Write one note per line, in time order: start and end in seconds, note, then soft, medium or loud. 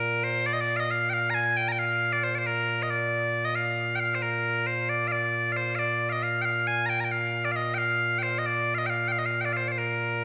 0.00 10.24 A#2 medium
0.00 0.24 A#4 medium
0.24 0.46 C5 medium
0.46 0.53 D5 loud
0.53 0.61 D#5 medium
0.61 0.76 D5 loud
0.76 0.91 D#5 medium
0.76 0.80 F5 medium
0.91 1.10 F5 medium
1.10 1.30 F5 loud
1.10 1.13 G5 loud
1.30 1.34 A#5 loud
1.34 1.57 G#5 loud
1.57 1.68 G5 loud
1.69 1.79 G5 medium
1.69 1.72 A#5 medium
1.79 2.13 F5 loud
2.13 2.23 D5 medium
2.23 2.35 C5 medium
2.35 2.47 C5 medium
2.35 2.38 D5 medium
2.47 2.83 A#4 loud
2.83 2.90 D#5 medium
2.90 3.45 D5 loud
3.45 3.55 D#5 medium
3.55 3.96 F5 loud
3.96 4.00 G5 loud
4.00 4.15 F5 loud
4.15 4.22 C5 medium
4.22 4.67 A#4 medium
4.67 4.89 C5 medium
4.89 5.08 D5 medium
5.08 5.12 F5 medium
5.12 5.52 D5 medium
5.52 5.56 F5 medium
5.56 5.75 C5 medium
5.75 6.09 D5 medium
5.75 5.79 F5 medium
6.09 6.23 D#5 medium
6.09 6.12 F5 medium
6.23 6.42 F5 medium
6.42 6.67 F5 loud
6.42 6.45 G5 loud
6.67 6.86 G#5 loud
6.86 7.00 G5 medium
6.86 6.89 A#5 medium
7.00 7.05 A#5 medium
7.05 7.12 G5 medium
7.12 7.45 F5 loud
7.45 7.52 D5 medium
7.52 7.56 F5 medium
7.56 7.74 D#5 medium
7.74 8.19 F5 loud
7.74 7.78 G5 loud
8.19 8.23 G5 medium
8.23 8.38 C5 medium
8.38 8.46 D#5 medium
8.46 8.75 D5 medium
8.75 8.86 D#5 medium
8.75 8.78 F5 medium
8.86 9.08 F5 medium
8.86 8.90 G5 medium
9.08 9.19 F5 medium
9.08 9.12 G5 medium
9.19 9.26 D#5 medium
9.26 9.41 F5 medium
9.41 9.45 G5 medium
9.45 9.53 D5 medium
9.53 9.68 C5 medium
9.53 9.57 F5 medium
9.68 9.78 C5 medium
9.68 9.72 D5 medium
9.78 10.24 A#4 medium